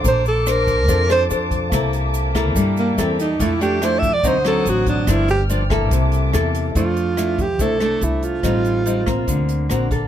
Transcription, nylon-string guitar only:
\new Staff \with { instrumentName = "Nylon-string guitar" } { \time 4/4 \key f \major \tempo 4 = 143 << { <d' a' c''>8 r8 <d' c''>4 <d' a' c''>8 <d' a' c''>8 <d' a' c''>4 | <bes e' a'>4. <bes e' a'>4. <bes e' a'>8 r8 | <a d' e'>8 <a d' e'>8 <a d' e'>8 r8 <fis c' ees'>8 <fis c' ees'>4. | <f bes d'>8 r8 <f bes d'>8 <bes e' a'>4. <bes e' a'>4 |
<a d'>4 <a d' e'>8 r8 <a d' e'>8 <a d' e'>4. | <g c' ees'>4 <g c' ees'>8 <bes c'>4. <bes c' fis'>8 <bes a'>8 | } \\ { bes2 f2 | c2 g2 | f2 d2 | g,2 c2 |
f2 c2 | a,2 d2 | } >> }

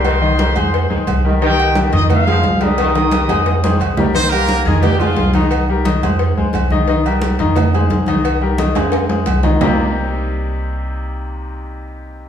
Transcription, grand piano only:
\new Staff \with { instrumentName = "Grand piano" } { \time 4/4 \key c \minor \tempo 4 = 176 <g g' bes'>8 <ees ees' ees''>8 <g g' bes'>8 <aes aes' c''>4 <aes aes' c''>4 <g g' bes'>8 | <ees ees' ees''>4 <g g' bes'>8 <ees ees' ees''>4 <aes aes' c''>4 <g g' bes'>8~ | <g g' bes'>8 <ees ees' ees''>8 <g g' bes'>8 <aes aes' c''>4 <aes aes' c''>4 <g g' bes'>8 | <ees ees' ees''>8 <g g' bes'>4 <ees ees' ees''>4 <aes aes' c''>4 <ees ees' ees''>8~ |
<ees ees' ees''>8 <g g' bes'>8 <ees ees' ees''>8 <aes aes' c''>4 <aes aes' c''>4 <ees ees' ees''>8 | <ees ees' ees''>8 <g g' bes'>4 <ees ees' ees''>4 <aes aes' c''>4 <ees ees' ees''>8~ | <ees ees' ees''>8 <g g' bes'>8 <ees ees' ees''>8 <aes aes' c''>4 <aes aes' c''>4 <ees ees' ees''>8 | <c g bes c' ees' g'>1~ |
<c g bes c' ees' g'>1 | }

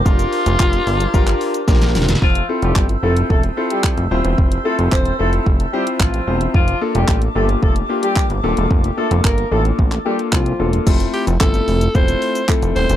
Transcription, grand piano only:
\new Staff \with { instrumentName = "Grand piano" } { \time 4/4 \key f \major \tempo 4 = 111 <d' f' g' bes'>4 <d' f' g' bes'>4 <d' f' g' bes'>4 <d' f' g' bes'>4 | r8 <c' e' f' a'>4 <c' e' f' a'>4 <c' e' f' a'>4 <c' e' f' c''>8~ | <c' e' f' c''>8 <c' e' f' a'>4 <c' e' f' a'>4 <c' e' f' c''>4 <c' e' f' c''>8 | r8 <bes d' f' a'>4 <bes d' f' g'>4 <bes d' f' g'>4 <bes d' f' a'>8~ |
<bes d' f' a'>8 <bes d' f' a'>4 <bes d' f' a'>4 <bes d' f' a'>4 <bes d' f' a'>8 | <a c' e' f' a'>4 <a c' e' f' a'>4 <a c' e' f' a'>4 <a c' e' f' a'>4 | }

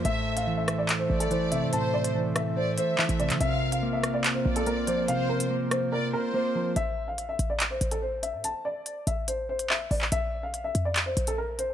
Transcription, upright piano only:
\new Staff \with { instrumentName = "Upright piano" } { \time 4/4 \key a \phrygian \tempo 4 = 143 e''8. f''8 e''8 d''8 c''8 a'16 c''8 e''8 | a''8 d''4 e''8 c''8 c''8 e''8 d''8 | e''8. f''8 e''8 d''8 c''8 a'16 bes'8 c''8 | f''8 bes'4 c''8 bes'8 bes'8 c''8 r8 |
e''8. f''8 e''8 d''8 c''8 a'16 c''8 e''8 | a''8 d''4 e''8 c''8 c''8 e''8 d''8 | e''8. f''8 e''8 d''8 c''8 a'16 bes'8 c''8 | }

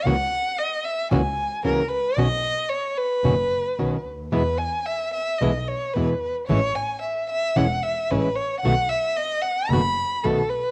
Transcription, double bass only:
\new Staff \with { instrumentName = "Double bass" } { \clef bass \time 4/4 \key b \mixolydian \tempo 4 = 112 cis,8 r4. cis,8 r8 cis,8 r8 | b,,8 r4. fis,,8 r8 b,,8 d,8 | e,8 r4. b,,8 r8 e,8 r8 | a,,8 r4. e,,8 r8 a,,8 r8 |
b,,8 r4. fis,,8 r8 b,,8 r8 | }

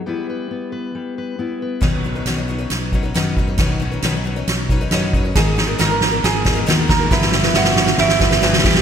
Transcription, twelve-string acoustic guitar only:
\new Staff \with { instrumentName = "Twelve-string acoustic guitar" } { \time 4/4 \key b \major \tempo 4 = 136 r1 | <b, dis fis cis' dis' b'>8 <fis cis' dis' b'>16 <fis cis' dis' b'>16 <b, dis fis cis' dis' b'>16 <fis cis' dis' b'>16 <fis cis' dis' b'>16 <fis cis' dis' b'>8. <fis cis' dis' b'>16 <fis cis' dis' b'>16 <b, dis fis cis' dis' b'>8 <fis cis' dis' b'>16 <fis cis' dis' b'>16 | <b, dis fis cis' dis' b'>8 <fis cis' dis' b'>16 <fis cis' dis' b'>16 <b, dis fis cis' dis' b'>16 <fis cis' dis' b'>16 <fis cis' dis' b'>16 <fis cis' dis' b'>8. <fis cis' dis' b'>16 <fis cis' dis' b'>16 <b, dis fis cis' dis' b'>8 <fis cis' dis' b'>16 <fis cis' dis' b'>16 | <gis, dis gis b dis' ais'>8 <gis b dis' ais'>16 <gis b dis' ais'>16 <gis, dis gis b dis' ais'>16 <gis b dis' ais'>16 <gis b dis' ais'>16 <gis b dis' ais'>8. <gis b dis' ais'>16 <gis b dis' ais'>16 <gis, dis gis b dis' ais'>8 <gis b dis' ais'>16 <gis b dis' ais'>16 |
<g b e' b'>8 <g b e' b'>16 <b e' b'>16 <g b e' b'>16 <b e' b'>16 <g b e' b'>16 <b e' b'>8. <g b e' b'>16 <b e' b'>16 <g b e' b'>8 <g b e' b'>8 | }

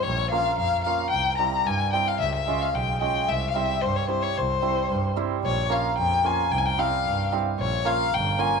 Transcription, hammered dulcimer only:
\new Staff \with { instrumentName = "Hammered dulcimer" } { \time 2/4 \tempo 4 = 111 r8 <bes des' f'>16 r8. <bes des' f'>16 r16 | r8 <g c' e'>16 r8. <g c' e'>16 r16 | r8 <aes des' f'>16 r8. <aes des' f'>16 r16 | r8 <g c' e'>16 r8. <g c' e'>16 r16 |
r8 <g c' e'>16 r8. <g c' e'>16 r16 | r8 <bes des' f'>16 r8. <bes des' f'>16 r16 | r8 <g c' e'>16 r8. <g c' e'>16 r16 | r8 <bes des' f'>16 r8. <bes des' f'>16 r16 | }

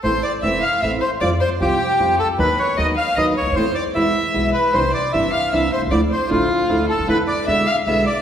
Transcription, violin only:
\new Staff \with { instrumentName = "Violin" } { \time 3/4 \key a \minor \tempo 4 = 153 c''8 d''8 e''8 f''8 e''8 c''8 | d''8 c''8 g'4. a'8 | b'8 cis''8 dis''8 f''8 dis''8 cis''8 | c''8 d''8 e''4. b'8 |
c''8 d''8 e''8 f''8 e''8 c''8 | d''8 c''8 f'4. a'8 | b'8 d''8 e''8 f''8 e''8 d''8 | }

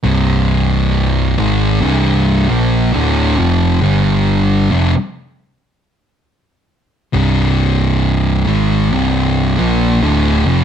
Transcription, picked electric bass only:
\new Staff \with { instrumentName = "Picked electric bass" } { \clef bass \time 4/4 \key c \minor \tempo 4 = 68 c,,4. aes,,8 c,,8. bes,,8 d,,8 f,,16~ | f,,16 g,,4 f,,16 r2 r8 | c,,4. aes,,8 c,,8. bes,,8 d,,8 f,,16 | }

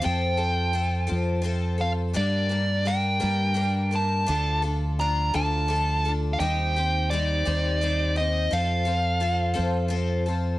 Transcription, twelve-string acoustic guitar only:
\new Staff \with { instrumentName = "Twelve-string acoustic guitar" } { \time 6/8 \key f \mixolydian \tempo 4. = 57 <f c' f' a'>8 <c' f' a'>8 <f c' f' a'>8 <f c' f' a'>8 <f c' f' a'>8 <c' f' a'>8 | <g, d g bes d' bes'>8 <g bes d' bes'>8 <g bes d' bes'>8 <g, d g bes d' bes'>8 <g bes d' bes'>8 <g bes d' bes'>8 | <d f d' f' a'>8 <d' f' a'>8 <f d' f'>8 <d f d' f' a'>8 <f d' f' a'>8 <d' f' a'>8 | <ees g c' ees' g'>8 <c' ees' g'>8 <g c' ees' g'>8 <ees g c' ees' g'>8 <g c' ees' g'>8 <c' ees' g'>8 |
<f c' f' a'>8 <c' f' a'>8 <f c' f' a'>8 <f c' f' a'>8 <f c' f' a'>8 <c' f' a'>8 | }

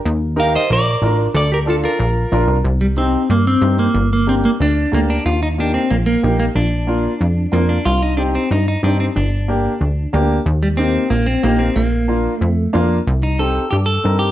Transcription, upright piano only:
\new Staff \with { instrumentName = "Upright piano" } { \time 4/4 \key c \dorian \tempo 4 = 184 r4 <ees' g' bes'>8 r4. <d' f' bes'>8 r8 | r4 <d' f' a'>8 r4. <d' f' bes'>8 r8 | r4 <c' ees' g'>8 r4. <c' ees' g'>8 r8 | r4 <bes d' g'>8 r4. <bes d' g'>8 r8 |
r4 <bes ees' g'>8 r4. <bes ees' g'>8 r8 | r4 <bes d' f'>8 r4. <bes d' f'>8 r8 | r4 <c' ees' g'>8 r4. <c' ees' g'>8 r8 | r4 <bes d' g'>8 r4. <bes d' g'>8 r8 |
r4 <bes ees' g'>8 r4. <bes ees' g'>8 r8 | r4 <bes d' f'>8 r4. <bes d' f'>8 r8 | r4 <c' ees' g'>8 r4. <c' ees' bes'>8 r8 | }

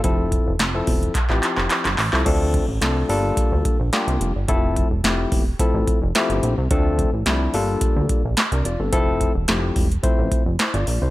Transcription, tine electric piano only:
\new Staff \with { instrumentName = "Tine electric piano" } { \time 4/4 \key f \major \tempo 4 = 108 << { r1 | r1 | r1 | r2. r16 <d' bes'>16 <f' d''>16 <c' a'>16~ |
<c' a'>16 r2 r8. <e' c''>16 <f' d''>8 <e' c''>16 | } \\ { <f c' e' a'>8. r8 <f c' e' a'>8. r16 <f c' e' g'>4 r8 <f c' e' a'>16 | <f a c' d' a'>8. r16 <f a c' d' a'>8 <g bes d' f' a'>4~ <g bes d' f' a'>16 r16 <g bes d' f' g'>8. r16 | <f a c' e' a'>8. r16 <f a c' e' g'>8. r16 <f a c' e' a'>8. r16 <f a c' e' g'>8. r16 | <f a c' d' a'>8. r16 <f a c' d' e'>8 <g bes d' f' a'>4~ <g bes d' f' a'>16 r4 r16 |
<f a c' e' a'>8. r16 <f a c' e' g'>8. r16 <f a c' e' c''>8. r4 r16 | } >> }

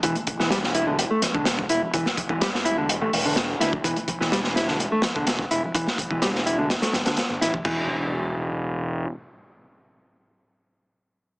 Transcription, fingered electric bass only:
\new Staff \with { instrumentName = "Fingered electric bass" } { \clef bass \time 4/4 \key e \minor \tempo 4 = 126 e,,16 r8 e,,4~ e,,16 r8. e,,8 r16 e,,16 r16 | e,,16 r8 e,,4. a,,16 e,,8. r16 d,16 r16 | e,,16 r8 e,,4~ e,,16 r8. e,,8 r16 e,,16 r16 | e,,16 r8 e,,4~ e,,16 r8 g,,16 r8 g,,16 a,,16 r16 |
e,,2. r4 | r1 | }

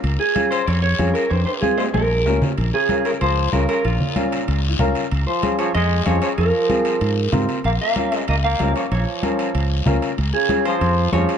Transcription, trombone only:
\new Staff \with { instrumentName = "Trombone" } { \clef bass \time 4/4 \key bes \minor \tempo 4 = 189 r1 | r1 | r8 des4 des8 f4 des8 des8 | bes,2. r4 |
r8 f4 f8 aes4 f8 f8 | f2. r4 | bes8 bes4. bes8 bes4 f8 | f2.~ f8 r8 |
r8 des4 f4. f4 | }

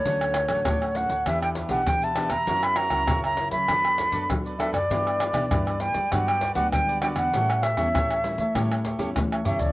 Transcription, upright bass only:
\new Staff \with { instrumentName = "Upright bass" } { \clef bass \time 4/4 \key d \major \tempo 4 = 99 d,8. a,,16 d,8. d,16 e,8. b,,16 e8. e,16 | fis,8. cis,16 fis,8. fis16 fis,8. fis,16 fis8. fis,16 | g,8. b,,16 g,8. g16 g,8. d,16 g8. e,16 | a,8. e,16 a,8. a16 a,8. e,16 a8 b,,16 cis,16 | }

